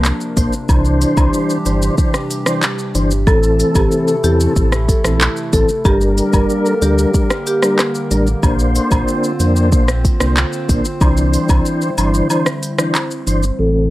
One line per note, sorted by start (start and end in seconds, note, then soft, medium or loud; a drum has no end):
0.00 0.13 C2 medium
0.00 5.81 C3 medium
0.00 0.66 F3 medium
0.00 0.65 A#3 medium
0.00 3.23 D4 medium
0.00 0.65 A#4 medium
0.05 clap loud
0.05 shaker medium
0.21 shaker medium
0.36 0.49 A#1 loud
0.36 0.54 A#3 medium
0.36 0.54 D4 medium
0.36 0.55 C5 medium
0.36 kick medium
0.36 closed hi-hat medium
0.36 cabasa medium
0.36 shaker medium
0.53 shaker medium
0.69 1.05 C2 loud
0.69 1.58 E3 medium
0.69 3.25 E3 medium
0.69 3.25 G3 medium
0.69 1.58 D4 medium
0.69 3.24 G4 medium
0.69 1.58 C5 loud
0.69 kick loud
0.69 high woodblock medium
0.69 shaker medium
0.85 shaker medium
1.01 closed hi-hat medium
1.01 cabasa medium
1.01 shaker medium
1.17 1.29 C2 medium
1.17 kick medium
1.17 high woodblock medium
1.17 shaker medium
1.34 shaker medium
1.50 shaker medium
1.65 1.90 G1 medium
1.65 1.95 E3 medium
1.65 1.95 D4 medium
1.65 1.96 C5 medium
1.65 closed hi-hat medium
1.65 cabasa medium
1.65 shaker medium
1.82 shaker medium
1.98 2.16 E3 medium
1.98 2.16 D4 medium
1.98 2.16 C5 loud
1.98 kick medium
1.98 shaker medium
2.14 cross-stick medium
2.14 shaker medium
2.31 closed hi-hat medium
2.31 cabasa medium
2.31 shaker medium
2.46 2.64 E3 medium
2.46 2.64 D4 medium
2.46 2.64 C5 medium
2.46 cross-stick loud
2.46 shaker medium
2.63 clap loud
2.63 shaker medium
2.79 shaker soft
2.95 3.29 G1 loud
2.95 3.12 E3 medium
2.95 3.13 D4 medium
2.95 3.13 C5 medium
2.95 closed hi-hat medium
2.95 cabasa medium
2.95 shaker medium
3.11 shaker medium
3.27 3.64 A1 loud
3.27 5.82 E3 medium
3.27 4.16 E3 medium
3.27 5.82 A3 medium
3.27 4.16 C4 medium
3.27 5.83 E4 medium
3.27 5.83 A4 medium
3.27 3.47 A4 loud
3.27 4.16 A4 loud
3.27 kick loud
3.27 high woodblock medium
3.27 shaker medium
3.43 shaker medium
3.59 closed hi-hat medium
3.59 cabasa medium
3.59 shaker medium
3.75 3.87 A1 medium
3.75 3.86 G4 medium
3.75 kick loud
3.75 high woodblock medium
3.75 shaker medium
3.92 shaker medium
4.08 4.18 A4 medium
4.08 shaker medium
4.24 4.48 E2 loud
4.24 4.54 E3 medium
4.24 4.54 C4 medium
4.24 4.34 G4 medium
4.24 4.54 A4 medium
4.24 closed hi-hat medium
4.24 cabasa medium
4.24 shaker medium
4.40 shaker medium
4.56 4.93 A1 loud
4.56 4.74 E3 medium
4.56 4.74 C4 medium
4.56 4.74 A4 loud
4.56 kick medium
4.56 shaker medium
4.72 cross-stick medium
4.72 shaker medium
4.88 4.99 A4 medium
4.88 kick loud
4.88 closed hi-hat medium
4.88 cabasa medium
4.88 shaker medium
5.04 5.29 A#1 medium
5.04 5.22 E3 medium
5.04 5.22 C4 medium
5.04 5.22 A4 medium
5.04 cross-stick loud
5.04 shaker medium
5.21 clap loud
5.21 shaker medium
5.37 shaker soft
5.53 5.65 A1 loud
5.53 5.71 E3 medium
5.53 5.71 C4 medium
5.53 5.63 A4 medium
5.53 5.71 A4 medium
5.53 kick medium
5.53 closed hi-hat medium
5.53 cabasa medium
5.53 shaker medium
5.69 shaker medium
5.85 6.22 G1 loud
5.85 10.97 D3 medium
5.85 6.74 G3 loud
5.85 8.41 G3 medium
5.85 10.97 A#3 medium
5.85 6.74 D4 medium
5.85 6.05 G4 loud
5.85 8.41 G4 medium
5.85 8.41 A#4 medium
5.85 6.74 A#4 loud
5.85 kick loud
5.85 high woodblock medium
5.85 shaker medium
6.01 shaker medium
6.17 closed hi-hat medium
6.17 cabasa medium
6.17 shaker medium
6.33 6.46 G1 medium
6.33 6.44 A#4 medium
6.33 kick loud
6.33 high woodblock medium
6.33 shaker medium
6.50 shaker medium
6.66 6.76 A4 medium
6.66 shaker medium
6.82 7.06 D2 medium
6.82 7.12 G3 medium
6.82 7.12 D4 medium
6.82 6.92 G4 medium
6.82 7.12 A#4 medium
6.82 closed hi-hat medium
6.82 cabasa medium
6.82 shaker medium
6.98 shaker medium
7.14 7.32 G3 medium
7.14 7.32 D4 medium
7.14 7.32 A#4 loud
7.14 kick medium
7.14 shaker medium
7.30 cross-stick loud
7.30 shaker medium
7.47 7.57 G4 medium
7.47 closed hi-hat medium
7.47 cabasa medium
7.47 shaker medium
7.62 7.80 G3 medium
7.62 7.80 D4 medium
7.62 7.81 A#4 medium
7.62 cross-stick loud
7.62 shaker medium
7.79 cross-stick loud
7.79 clap loud
7.79 shaker medium
7.95 shaker medium
8.11 8.35 A1 medium
8.11 8.29 G3 medium
8.11 8.29 D4 medium
8.11 8.29 A#4 medium
8.11 closed hi-hat medium
8.11 cabasa medium
8.11 shaker medium
8.27 shaker medium
8.43 8.80 A#1 loud
8.43 9.32 A#3 medium
8.43 13.55 C4 medium
8.43 9.32 D4 medium
8.43 10.99 F4 medium
8.43 9.32 C5 loud
8.43 13.56 C5 medium
8.43 kick loud
8.43 high woodblock medium
8.43 shaker medium
8.59 shaker medium
8.75 closed hi-hat medium
8.75 cabasa medium
8.75 shaker medium
8.91 9.04 A#1 loud
8.91 kick loud
8.91 high woodblock medium
8.91 shaker medium
9.08 shaker medium
9.24 shaker medium
9.40 9.74 F2 loud
9.40 9.70 A#3 medium
9.40 9.70 D4 medium
9.40 9.70 C5 medium
9.40 closed hi-hat medium
9.40 cabasa medium
9.40 shaker medium
9.56 shaker medium
9.72 10.09 A#1 loud
9.72 9.90 A#3 medium
9.72 9.90 D4 medium
9.72 9.90 C5 loud
9.72 kick medium
9.72 shaker medium
9.88 cross-stick medium
9.88 shaker medium
10.05 kick loud
10.05 closed hi-hat medium
10.05 cabasa medium
10.05 shaker medium
10.20 10.45 C2 loud
10.20 10.38 A#3 medium
10.20 10.38 D4 medium
10.20 10.38 C5 medium
10.20 cross-stick loud
10.20 shaker medium
10.37 clap loud
10.37 shaker medium
10.53 shaker soft
10.68 10.81 A#1 loud
10.68 10.86 A#3 medium
10.68 10.87 D4 medium
10.68 10.87 C5 medium
10.68 kick medium
10.68 closed hi-hat medium
10.68 cabasa medium
10.68 shaker medium
10.85 shaker medium
11.01 11.38 C2 loud
11.01 13.57 D3 medium
11.01 11.90 E3 medium
11.01 13.57 G3 medium
11.01 11.90 D4 medium
11.01 13.57 E4 medium
11.01 11.90 C5 loud
11.01 kick loud
11.01 high woodblock medium
11.01 shaker medium
11.17 shaker medium
11.33 closed hi-hat medium
11.33 cabasa medium
11.33 shaker medium
11.49 11.62 C2 medium
11.49 kick loud
11.49 high woodblock medium
11.49 shaker medium
11.66 shaker medium
11.82 shaker medium
11.98 12.22 G1 medium
11.98 12.28 E3 medium
11.98 12.28 D4 medium
11.98 12.28 C5 medium
11.98 closed hi-hat medium
11.98 cabasa medium
11.98 high woodblock medium
11.98 shaker medium
12.14 shaker medium
12.30 12.48 E3 medium
12.30 12.48 D4 medium
12.30 12.48 C5 loud
12.30 high woodblock medium
12.30 shaker medium
12.46 cross-stick medium
12.46 shaker medium
12.63 closed hi-hat medium
12.63 cabasa medium
12.63 shaker medium
12.78 12.96 E3 medium
12.78 12.96 D4 medium
12.78 12.97 C5 medium
12.78 cross-stick loud
12.78 shaker medium
12.95 clap loud
12.95 high woodblock medium
12.95 shaker medium
13.11 shaker soft
13.27 13.51 G1 loud
13.27 13.45 E3 medium
13.27 13.45 D4 medium
13.27 13.45 C5 medium
13.27 closed hi-hat medium
13.27 cabasa medium
13.27 shaker medium
13.43 shaker medium
13.59 13.90 A1 medium
13.59 13.90 C3 medium
13.59 13.90 E3 medium
13.59 13.90 A3 medium
13.59 13.90 C4 medium
13.59 13.90 E4 medium
13.59 13.80 A4 medium
13.59 13.90 A4 medium